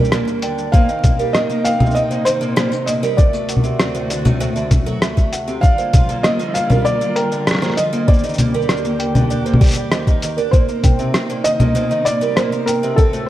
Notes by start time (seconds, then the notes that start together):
Already playing: D#2 G3 D4 A#4
0.05 cabasa
0.12 A#2, cross-stick, cabasa
0.28 A#3, cabasa
0.42 D3 G5, closed hi-hat
0.58 cabasa
0.72 A#2 C3 A#3 D#4 C5 F5, kick, cabasa
0.89 D#3, cabasa
1.04 A#2, kick, closed hi-hat, low conga, cabasa
1.19 G3 A#4, cabasa
1.33 A#2 D#5, cross-stick, cabasa
1.49 A#3, cabasa
1.64 F5 G5, closed hi-hat, cabasa
1.80 C3, low conga, cabasa
1.86 cabasa
1.91 D#5, cabasa
1.95 C4, cabasa
2.10 A#2 C5, cabasa
2.25 D#3 C5, closed hi-hat, cabasa
2.41 A#2, cabasa
2.56 A#2 C5, cross-stick, cabasa
2.72 D#3, cabasa
2.86 A#2 D#5, closed hi-hat, cabasa
3.03 G3 A#4, cabasa
3.17 D2 A2 F#4 D5, kick, cabasa
3.33 A3, cabasa
3.49 F#5, closed hi-hat, cabasa
3.56 low conga
3.64 C3, cabasa
3.79 C4, cross-stick, cabasa
3.95 A2 C5, cabasa
4.10 D3, closed hi-hat, cabasa
4.25 A2, low conga, cabasa
4.40 A2 C5, cabasa
4.56 D3, cabasa
4.71 A2, kick, closed hi-hat, low conga, cabasa
4.86 F#3 A4, cabasa
5.02 A2, cross-stick, cabasa
5.17 A3, kick, cabasa
5.32 F#5, closed hi-hat, cabasa
5.48 C3, cabasa
5.61 D3 G3 A#3 D4 F4 F5, kick, cabasa
5.78 A#2 C5, cabasa
5.93 F3, kick, closed hi-hat, low conga, cabasa
6.09 A#2, cabasa
6.23 A#2 C5 D#5, cross-stick, cabasa
6.39 F3, cabasa
6.54 A#2 F5, closed hi-hat, cabasa
6.70 G3 A#4, low conga, cabasa
6.85 A#2 D5, cabasa
7.01 A#3, cabasa
7.16 A#4 G5, closed hi-hat
7.32 D3, cabasa
7.47 D4, cross-stick, cabasa
7.51 cross-stick
7.55 cross-stick
7.59 A#2, cross-stick
7.62 C5, cross-stick, cabasa
7.66 cross-stick
7.70 cross-stick
7.74 F3 D#5, cross-stick, closed hi-hat
7.78 cabasa
7.93 A#2, cabasa
8.07 D#2 A#2 G4 C5 D5, kick, cabasa
8.13 cabasa
8.19 cabasa
8.24 D#3, cabasa
8.29 cabasa
8.34 cabasa
8.38 A#2, closed hi-hat, low conga, cabasa
8.54 G3 A#4, cabasa
8.62 cabasa
8.69 A#2, cross-stick, cabasa
8.77 cabasa
8.85 A#3, cabasa
8.99 G5, closed hi-hat
9.15 D3, low conga, cabasa
9.30 D4, cabasa
9.46 A#2 C5, cabasa
9.54 low conga
9.61 G3, kick, closed hi-hat, cabasa
9.64 closed hi-hat, cabasa
9.66 closed hi-hat, cabasa
9.69 closed hi-hat, cabasa
9.71 closed hi-hat, cabasa
9.74 G3, closed hi-hat, cabasa
9.77 cabasa
9.92 D#3 C5, cross-stick, cabasa
10.07 D#3, kick, cabasa
10.22 D#3, closed hi-hat, cabasa
10.37 D4 A#4, cabasa
10.51 A#2 C3 A#3 D#4 C5, kick, cabasa
10.68 A#3, cabasa
10.84 G5, kick, closed hi-hat, low conga, cabasa
10.99 C3, cabasa
11.14 C4, cross-stick, cabasa
11.29 A#2 C5, cabasa
11.44 D#3 D#5, closed hi-hat, cabasa
11.60 A#2, low conga, cabasa
11.75 A#2 C5, cabasa
11.91 D#3, cabasa
12.05 A#2 D5, closed hi-hat, cabasa
12.21 G3 A#4, cabasa
12.36 A#2 C5, cross-stick, cabasa
12.52 A#3, cabasa
12.66 A#4 G5, closed hi-hat, cabasa
12.83 C3, cabasa
12.96 D2 C4 F#4 A4, kick, cabasa
13.13 A2 C5, cabasa